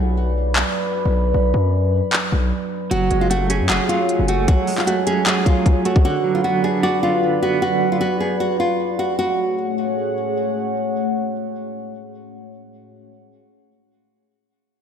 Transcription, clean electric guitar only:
2.91 3.88 F#3 medium
3.11 3.30 G#3 medium
3.30 4.27 A3 medium
3.50 4.48 C#4 medium
3.70 4.68 G#4 loud
3.89 4.47 F#3 medium
4.29 4.86 A3 medium
4.48 5.44 F#3 loud
4.68 5.66 G#3 medium
4.87 5.84 A3 medium
5.07 6.05 C#4 medium
5.27 6.05 G#4 loud
5.45 6.05 F#3 medium
5.85 6.05 A3 medium
6.05 7.02 D3 loud
6.24 7.22 F#3 medium
6.44 7.41 B3 medium
6.64 7.62 D4 medium
6.83 7.81 D5 loud
7.03 8.01 D3 medium
7.43 8.40 B3 medium

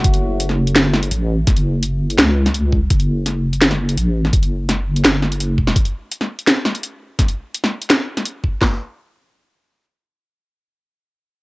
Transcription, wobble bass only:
0.04 1.10 F#1 loud
1.11 1.46 A1 loud
1.47 2.17 F#1 medium
2.18 2.89 C#2 medium
2.90 3.96 F#1 medium
3.97 4.31 A1 loud
4.33 5.03 F#1 medium
5.04 5.54 F#1 loud
5.54 5.74 F1 loud

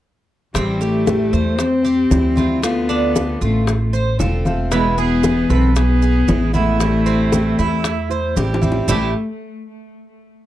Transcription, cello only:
0.54 0.82 G3 medium
0.81 1.60 A3 loud
1.59 2.63 C4 loud
2.64 3.38 B3 medium
3.44 3.91 A3 medium
4.73 4.97 G#3 medium
4.98 5.52 B3 loud
5.51 5.76 C4 loud
5.78 6.51 B3 loud
6.56 8.59 A3 loud
8.89 9.13 A3 medium

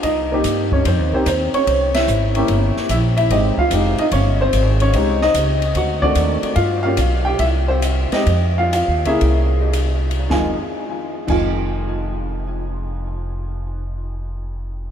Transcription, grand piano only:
0.03 0.32 D#4 medium
0.03 0.74 D#5 medium
0.32 0.83 A#3 medium
0.32 0.83 C4 medium
0.32 0.84 D#4 medium
0.32 0.84 G4 medium
0.73 0.86 C#4 medium
0.73 0.86 C#5 medium
0.86 1.12 C4 medium
0.86 1.13 C5 medium
1.13 1.25 A#3 medium
1.13 1.25 C4 medium
1.13 1.26 D#4 medium
1.13 1.26 G4 medium
1.13 1.19 C5 medium
1.27 1.53 C4 medium
1.27 1.52 C5 medium
1.54 1.93 C#4 medium
1.54 1.96 C#5 loud
1.95 2.35 E4 medium
1.95 2.72 E5 loud
2.35 2.87 A#3 medium
2.35 2.87 C#4 medium
2.35 2.88 E4 medium
2.35 2.88 G4 medium
2.90 2.98 E4 medium
2.90 2.96 E5 medium
3.17 3.30 E4 medium
3.17 3.31 E5 loud
3.30 3.55 G#3 medium
3.30 3.55 C4 medium
3.30 3.56 D#4 medium
3.30 3.56 G4 medium
3.30 3.38 D#5 loud
3.59 3.97 F4 medium
3.59 3.96 F5 loud
3.72 3.96 G#3 medium
3.72 3.96 C4 medium
3.72 3.97 D#4 medium
3.72 3.97 G4 medium
3.99 4.05 D#4 medium
3.99 4.04 D#5 loud
4.12 4.38 C#4 medium
4.12 4.41 C#5 loud
4.41 4.79 C4 medium
4.41 4.82 C5 loud
4.82 5.19 C#4 medium
4.82 5.19 C#5 loud
4.94 5.19 G#3 medium
4.94 5.19 C4 medium
4.94 5.19 D#4 medium
4.94 5.20 G4 medium
5.22 5.60 D#4 medium
5.22 5.60 D#5 loud
5.77 6.03 F#4 medium
5.77 6.40 F#5 medium
6.02 6.55 D#3 medium
6.02 6.54 A3 medium
6.02 6.54 C4 medium
6.02 6.54 D4 medium
6.02 6.55 F#4 medium
6.02 6.53 D5 loud
6.56 6.83 F4 medium
6.56 6.81 F5 loud
6.83 6.97 A#3 medium
6.83 6.97 C#4 medium
6.83 7.23 F4 medium
6.83 6.98 G4 medium
6.83 7.26 F5 loud
7.25 7.39 G4 medium
7.25 7.40 G5 medium
7.39 7.48 E4 medium
7.39 7.46 E5 loud
7.68 8.10 C4 medium
7.68 8.14 C5 loud
8.12 8.26 G#3 medium
8.12 8.26 C4 medium
8.12 8.26 D#4 medium
8.12 8.27 G4 medium
8.12 8.60 D#5 medium
8.58 8.73 F4 medium
8.58 8.72 F5 medium
8.73 9.04 F4 medium
8.73 9.07 F5 medium
9.06 9.71 A#3 medium
9.06 9.71 C#4 medium
9.06 9.72 E4 medium
9.06 9.72 G#4 medium
9.06 10.08 E5 medium
10.29 10.54 F2 medium
10.29 10.54 D#3 medium
10.29 10.55 G#3 medium
10.29 10.55 F4 medium
10.29 10.53 G#5 medium
11.27 14.91 F2 medium
11.27 14.91 D#3 medium
11.27 14.91 G#3 medium
11.27 14.91 F4 medium
11.27 14.91 G#5 medium

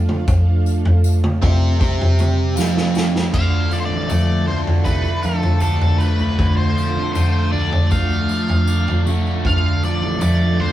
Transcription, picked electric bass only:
1.43 1.78 C3 medium
1.81 2.53 C3 medium
2.58 3.30 F2 medium
3.34 3.69 D2 medium
3.91 4.11 A1 medium
4.11 4.46 F2 medium
4.48 4.84 D2 medium
4.86 5.04 C2 medium
5.25 5.42 F2 medium
5.63 5.98 D2 medium
6.20 6.38 D2 medium
6.39 6.75 D2 loud
6.97 7.14 D3 medium
7.16 7.33 D3 medium
7.54 7.72 D2 medium
7.92 8.28 D2 medium
9.07 9.42 D3 medium
9.45 9.81 D2 medium
10.01 10.22 A1 medium
10.22 10.57 F2 medium
10.59 10.72 D2 medium

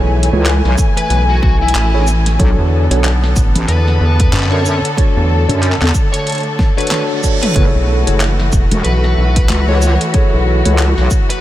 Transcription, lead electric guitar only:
0.97 1.21 B4 medium
1.29 1.38 F#4 medium
1.42 1.55 F#4 medium
1.62 2.07 E4 medium
3.68 4.48 B4 medium
4.51 4.60 C#5 medium
4.64 4.77 C#5 medium
6.13 6.37 C#5 medium
6.78 7.02 B4 medium
7.42 7.63 B4 medium
8.84 9.64 B4 medium
9.69 9.77 C#5 medium
9.81 9.93 C#5 medium
11.30 11.41 B4 medium

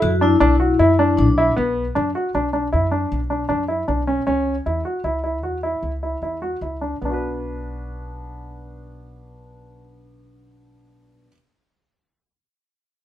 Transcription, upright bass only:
0.02 0.34 F#2 loud
0.41 0.72 B1 medium
0.79 1.20 F#2 medium
1.18 1.50 B1 medium
1.58 1.89 B1 medium
1.96 2.11 F#2 medium
2.34 2.75 B1 medium
2.73 3.04 F#2 medium
3.12 3.43 B1 medium
3.50 3.81 F#2 medium
3.88 4.20 B1 medium
4.27 4.59 C#2 medium
4.66 4.82 E2 medium
5.04 5.44 C#2 medium
5.44 5.75 E2 medium
5.83 6.15 C#2 medium
6.22 6.54 E2 medium
6.61 6.94 C#2 medium
7.02 11.27 B1 medium

